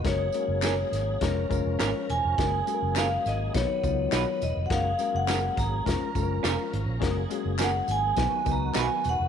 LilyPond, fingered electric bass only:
\new Staff \with { instrumentName = "Fingered electric bass" } { \clef bass \time 4/4 \key fis \major \tempo 4 = 103 fis,,8 r16 fis,,8. gis,,8 eis,,8 fis,,16 eis,,16 gis,,16 r16 e,,16 eis,,16 | fis,,8 r16 fis,,8. gis,,8 b,,16 r16 cis,8 b,,16 r16 e,,16 eis,,16 | fis,,8 r16 fis,,8. gis,,8 eis,,16 r16 fis,,8 eis,,16 r16 gis,,16 ais,,16 | fis,,8 r16 fis,,8. gis,,8 b,,16 r16 cis,8 b,,16 r16 e,,16 eis,,16 | }